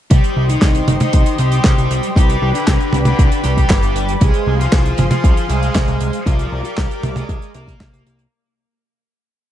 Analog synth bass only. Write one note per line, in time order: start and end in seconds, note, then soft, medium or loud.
0.11 0.21 C2 loud
0.37 0.57 C2 loud
0.62 0.83 C2 medium
0.88 0.98 G1 medium
1.14 1.24 C2 medium
1.39 1.60 C2 loud
1.65 1.75 C2 medium
1.78 1.88 C2 loud
1.91 2.01 C2 loud
2.16 2.37 C2 loud
2.42 2.52 C2 loud
2.68 2.78 C2 medium
2.93 3.14 C2 loud
3.19 3.29 C2 loud
3.45 3.65 C2 loud
3.70 3.80 G1 medium
3.83 3.93 G1 loud
3.96 4.16 G1 medium
4.21 4.32 C2 loud
4.47 4.67 C2 loud
4.73 4.93 C2 medium
4.98 5.09 G1 medium
5.24 5.34 C2 medium
5.50 5.70 C2 loud
5.75 5.85 C2 medium
5.88 5.98 C2 loud
6.01 6.11 C2 loud
6.27 6.47 C2 loud
6.52 6.62 C2 loud
6.78 6.88 C2 loud
7.04 7.24 C2 loud
7.29 7.39 C2 medium
7.55 7.75 C2 loud
7.80 7.91 C2 medium
7.93 8.04 C2 medium
8.06 8.27 C2 medium